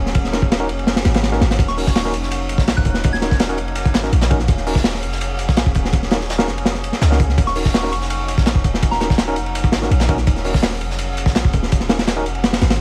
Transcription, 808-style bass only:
0.00 0.70 D#1 medium
0.69 1.05 F1 loud
1.05 1.40 G#1 medium
1.41 1.58 G#1 loud
1.59 2.15 D#1 loud
2.14 2.60 F1 loud
2.58 2.75 A#1 medium
2.77 3.60 D#1 loud
3.58 3.96 F1 loud
3.94 4.11 G#1 loud
4.12 4.47 A#1 loud
4.48 5.04 D#1 loud
5.03 5.50 F1 loud
5.49 5.65 A#1 medium
5.66 6.49 D#1 loud
6.47 6.91 F1 loud
7.02 7.36 C#2 medium
7.38 7.94 D#1 loud
7.92 8.39 F1 loud
8.38 8.54 A#1 medium
8.55 9.38 D#1 medium
9.37 9.74 F1 loud
9.73 9.89 G#1 loud
9.91 10.26 A#1 loud
10.27 10.83 D#1 loud
10.81 11.27 F1 loud
11.26 11.42 A#1 medium
11.45 12.27 D#1 loud
12.26 12.61 F1 loud
12.62 12.81 G#1 medium

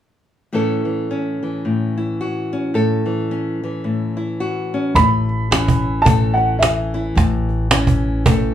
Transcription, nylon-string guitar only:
0.53 1.65 A2 medium
0.53 0.85 E3 soft
0.53 1.10 C#4 soft
0.53 1.97 E4 soft
0.53 2.20 A4 medium
0.85 1.42 E3 soft
1.11 2.52 C#4 soft
1.43 3.04 E3 soft
1.65 2.74 A2 soft
1.98 4.16 E4 soft
2.21 2.75 F#4 soft
2.53 3.31 C#4 soft
2.74 3.83 A2 medium
2.74 4.40 A4 medium
3.06 3.62 E3 soft
3.31 4.73 C#4 soft
3.64 5.50 E3 medium
3.84 4.93 A2 soft
4.17 4.93 E4 soft
4.40 4.96 F#4 soft
4.74 4.94 C#4 soft
4.96 6.04 A2 medium
5.51 6.59 E3 medium
5.51 6.36 C#4 soft
6.04 7.13 A2 soft
6.04 8.27 A4 medium
6.37 7.13 C#4 soft
6.60 7.70 E3 medium
6.94 7.14 E4 medium
7.15 8.25 A2 medium
7.71 8.54 E3 medium
7.71 8.54 C#4 soft
8.26 8.54 A2 medium
8.26 8.54 A4 medium

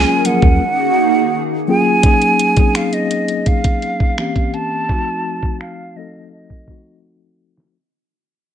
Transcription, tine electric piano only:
0.00 0.12 F#3 medium
0.00 0.13 A#3 medium
0.00 0.13 C#4 medium
0.00 0.13 F4 medium
0.00 0.14 G#4 medium
0.25 0.61 F3 medium
0.25 0.60 F#3 medium
0.25 0.61 A#3 medium
0.25 0.61 C#4 medium
0.25 0.62 A#4 medium
1.67 1.95 F#3 medium
1.67 1.95 A#3 medium
1.67 1.96 C#4 medium
1.67 1.96 F4 medium
1.67 1.97 G#4 medium
2.03 2.45 F#3 medium
2.03 2.45 A#3 medium
2.03 2.45 C#4 medium
2.03 2.46 D#4 medium
2.03 2.46 G#4 medium
2.57 3.67 F#3 medium
2.57 3.68 A#3 medium
2.57 2.64 C4 medium
2.57 3.68 D#4 medium
2.57 3.69 G#4 medium
2.64 3.71 C#4 medium
4.17 4.75 E3 medium
4.17 4.75 A#3 medium
4.17 4.75 C4 medium
4.17 4.76 C#4 medium
4.17 4.76 G4 medium
4.88 5.72 F3 medium
4.88 5.72 A3 medium
4.88 5.72 C4 medium
4.88 5.73 D#4 medium
4.88 5.73 F#4 medium
5.96 6.51 F3 medium
5.96 6.52 A3 medium
5.96 6.52 C4 medium
5.96 6.52 D#4 medium
5.96 6.53 A4 medium
6.68 7.51 F3 medium
6.68 7.51 A3 medium
6.68 7.51 C4 medium
6.68 7.52 D#4 medium
6.68 7.52 F#4 medium

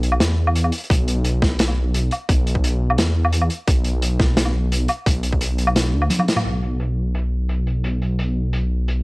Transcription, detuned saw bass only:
0.00 0.20 B1 loud
0.21 0.72 E2 medium
0.90 1.76 B1 loud
1.77 2.10 B1 medium
2.29 2.97 B1 loud
2.98 3.49 E2 medium
3.68 4.53 B1 loud
4.54 4.88 B1 medium
5.06 5.95 B1 loud
5.93 6.09 D2 loud
6.45 9.03 B1 medium

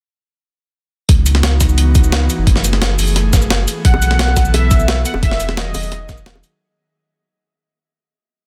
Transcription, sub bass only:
1.09 2.28 C#2 loud
2.38 2.46 F#1 medium
2.47 2.97 F#1 loud
2.99 3.66 F#1 loud
3.85 5.04 B1 loud
5.14 5.22 E1 medium
5.23 5.73 E1 loud
5.75 6.42 E1 loud

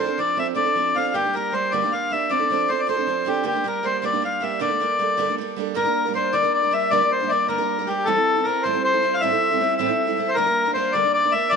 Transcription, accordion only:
0.00 0.19 C5 medium
0.19 0.38 D5 medium
0.39 0.47 E5 medium
0.56 0.96 D5 medium
0.96 1.15 F5 medium
1.14 1.35 G4 medium
1.34 1.54 A#4 medium
1.53 1.73 C5 medium
1.71 1.93 D5 medium
1.92 2.12 F5 medium
2.12 2.31 E5 medium
2.30 2.70 D5 medium
2.69 2.81 C5 medium
2.80 2.87 D5 medium
2.89 3.28 C5 medium
3.27 3.45 G4 medium
3.46 3.67 G4 medium
3.67 3.86 A#4 medium
3.85 4.04 C5 medium
4.05 4.23 D5 medium
4.25 4.43 F5 medium
4.43 4.60 E5 medium
4.61 5.35 D5 medium
5.76 6.12 A#4 medium
6.15 6.34 C5 medium
6.33 6.52 D5 medium
6.54 6.73 D5 medium
6.73 6.91 E5 medium
6.91 7.12 D5 loud
7.12 7.31 C5 medium
7.29 7.47 D5 medium
7.48 7.89 A#4 medium
7.87 8.07 G4 medium
8.05 8.46 A4 loud
8.44 8.64 A#4 medium
8.63 8.82 C5 medium
8.84 9.15 C5 loud
9.14 9.21 F5 medium
9.20 9.74 E5 loud
9.77 10.30 E5 medium
10.28 10.36 C5 medium
10.34 10.71 A#4 loud
10.74 10.94 C5 medium
10.92 11.12 D5 medium
11.13 11.33 D5 loud
11.32 11.51 E5 medium
11.49 11.56 D5 loud

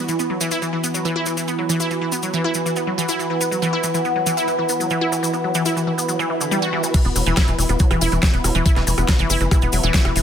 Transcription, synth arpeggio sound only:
0.09 0.12 E3 medium
0.19 0.26 B3 medium
0.30 0.36 F#3 medium
0.41 0.47 E3 loud
0.51 0.58 E4 loud
0.62 0.68 E3 medium
0.73 0.77 E3 medium
0.84 0.90 B3 medium
0.94 1.01 F#3 medium
1.05 1.11 E3 loud
1.16 1.22 E4 loud
1.26 1.33 E3 medium
1.37 1.41 E3 medium
1.48 1.54 B3 medium
1.59 1.65 F#3 medium
1.69 1.76 E3 loud
1.80 1.86 E4 loud
1.91 1.97 E3 medium
2.01 2.05 E3 medium
2.12 2.18 B3 medium
2.23 2.29 F#3 medium
2.34 2.40 E3 loud
2.44 2.51 E4 loud
2.55 2.61 E3 medium
2.66 2.69 E3 medium
2.76 2.83 B3 medium
2.87 2.93 F#3 medium
2.98 3.04 E3 loud
3.09 3.15 E4 loud
3.19 3.26 E3 medium
3.30 3.34 E3 medium
3.41 3.47 B3 medium
3.51 3.58 F#3 medium
3.62 3.68 E3 loud
3.73 3.79 E4 loud
3.84 3.90 E3 medium
3.94 3.98 E3 medium
4.05 4.11 B3 medium
4.16 4.22 F#3 medium
4.26 4.33 E3 loud
4.37 4.43 E4 loud
4.48 4.54 E3 medium
4.59 4.62 E3 medium
4.69 4.76 B3 medium
4.80 4.86 F#3 medium
4.91 4.97 E3 loud
5.01 5.08 E4 loud
5.12 5.18 E3 medium
5.23 5.27 E3 medium
5.33 5.40 B3 medium
5.44 5.51 F#3 medium
5.55 5.61 E3 loud
5.66 5.72 E4 loud
5.76 5.83 E3 medium
5.87 5.91 E3 medium
5.98 6.04 B3 medium
6.08 6.15 F#3 medium
6.19 6.26 E3 loud
6.30 6.36 E3 medium
6.41 6.47 D3 medium
6.51 6.58 G3 loud
6.62 6.68 F#4 loud
6.73 6.79 E3 loud
6.84 6.93 E3 medium
6.94 6.98 E3 medium
7.05 7.11 B3 medium
7.16 7.22 F#3 medium
7.26 7.33 E3 loud
7.37 7.43 E4 loud
7.48 7.54 E3 medium
7.59 7.62 E3 medium
7.69 7.76 B3 medium
7.80 7.86 F#3 medium
7.91 7.97 E3 loud
8.01 8.08 E4 loud
8.12 8.18 E3 medium
8.23 8.27 E3 medium
8.34 8.40 B3 medium
8.44 8.51 F#3 medium
8.55 8.61 E3 loud
8.66 8.72 E4 loud
8.76 8.83 E3 medium
8.87 8.91 E3 medium
8.98 9.04 B3 medium
9.09 9.15 F#3 medium
9.19 9.26 E3 loud
9.30 9.36 E4 loud
9.41 9.47 E3 medium
9.51 9.55 E3 medium
9.62 9.68 B3 medium
9.73 9.79 F#3 medium
9.84 9.90 E3 loud
9.94 10.01 E4 loud
10.05 10.11 E3 medium
10.16 10.19 E3 medium

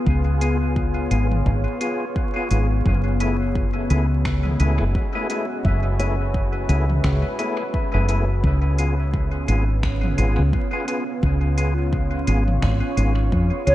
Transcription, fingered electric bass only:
0.07 1.08 C#2 medium
1.11 1.43 G#1 medium
1.46 1.64 G#1 medium
2.51 2.82 G#1 medium
2.86 3.87 F#1 medium
3.90 4.57 C#2 medium
4.60 4.78 C#2 medium
4.80 4.93 F#1 medium
5.65 6.67 F#1 medium
6.69 7.01 C#2 medium
7.04 7.22 C#2 medium
7.94 8.41 F#1 medium
8.44 9.46 C#2 loud
9.48 10.15 G#1 medium
10.18 10.36 G#1 medium
10.38 10.51 C#2 medium
11.23 12.25 C#2 medium
12.27 12.59 G#1 medium
12.63 12.80 G#1 loud
12.97 13.29 G#1 loud
13.32 13.50 F2 medium
13.67 13.75 C#2 medium

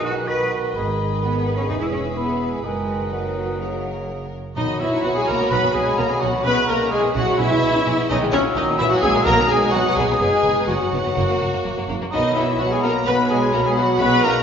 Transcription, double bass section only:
0.00 0.73 B1 medium
0.75 1.69 G#1 medium
1.68 2.64 E1 medium
2.65 4.33 F#1 medium
4.56 4.61 B1 medium
4.81 4.86 B1 medium
5.04 5.09 B1 soft
5.28 5.33 B1 medium
5.51 5.56 B1 medium
5.75 5.80 B1 medium
5.99 6.04 B1 medium
6.23 6.27 B1 medium
6.46 6.50 B1 medium
6.69 6.74 B1 medium
6.93 6.97 B1 medium
7.16 7.21 B1 medium
7.39 7.44 B1 medium
7.63 7.67 B1 medium
7.86 7.91 B1 medium
8.09 8.14 B1 medium
8.33 8.37 A#1 medium
8.56 8.60 A#1 medium
8.80 8.84 A#1 medium
9.03 9.08 A#1 medium
9.26 9.31 B1 loud
9.49 9.54 B1 medium
9.73 9.77 B1 medium
9.97 10.01 B1 medium
10.20 10.25 F#1 medium
10.44 10.49 F#1 medium
10.68 10.73 F#1 medium
10.92 10.97 F#1 medium
11.17 11.22 F#1 medium
11.42 11.46 F#1 medium
11.65 11.70 F#1 medium
11.89 11.94 F#1 medium
12.12 12.54 B1 medium
12.60 13.02 B1 medium
13.07 13.49 B1 medium
13.54 13.95 B1 medium
14.01 14.42 B1 medium

